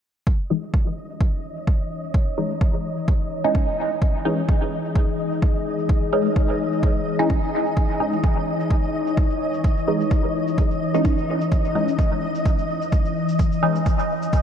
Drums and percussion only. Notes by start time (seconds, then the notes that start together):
0.27 kick
0.40 cabasa
0.63 cabasa
0.74 kick
1.10 cabasa
1.21 kick
1.33 cabasa
1.57 cabasa
1.67 kick
1.80 cabasa
2.04 cabasa
2.14 kick
2.27 cabasa
2.51 cabasa
2.61 kick, cabasa
2.97 cabasa
3.08 kick, cabasa
3.21 cabasa
3.44 cabasa
3.55 kick, cabasa
3.68 cabasa
3.91 cabasa
4.02 kick, cabasa
4.15 cabasa
4.38 cabasa
4.49 kick, cabasa
4.85 cabasa
4.96 kick, cabasa
5.09 cabasa
5.32 cabasa
5.42 kick, cabasa
5.55 cabasa
5.79 cabasa
5.89 kick, cabasa
6.02 cabasa
6.26 cabasa
6.36 kick, cabasa
6.73 cabasa
6.83 kick, cabasa
6.96 cabasa
7.19 cabasa
7.30 kick, cabasa
7.43 cabasa
7.66 cabasa
7.77 kick, cabasa
7.90 cabasa
8.13 cabasa
8.24 kick, cabasa
8.60 cabasa
8.71 kick, cabasa
8.83 cabasa
9.07 cabasa
9.17 kick, cabasa
9.30 cabasa
9.54 cabasa
9.64 kick, cabasa
9.77 cabasa
10.01 cabasa
10.11 kick, cabasa
10.48 cabasa
10.58 kick, cabasa
10.71 cabasa
10.94 cabasa
11.05 kick, cabasa
11.18 cabasa
11.41 cabasa
11.52 kick, cabasa
11.65 cabasa
11.88 cabasa
11.99 kick, cabasa
12.35 cabasa
12.46 kick, cabasa
12.58 cabasa
12.82 cabasa
12.92 kick, cabasa
13.05 cabasa
13.29 cabasa
13.39 kick, cabasa
13.52 cabasa
13.76 cabasa
13.86 kick, cabasa
13.99 cabasa
14.22 cabasa
14.33 kick, cabasa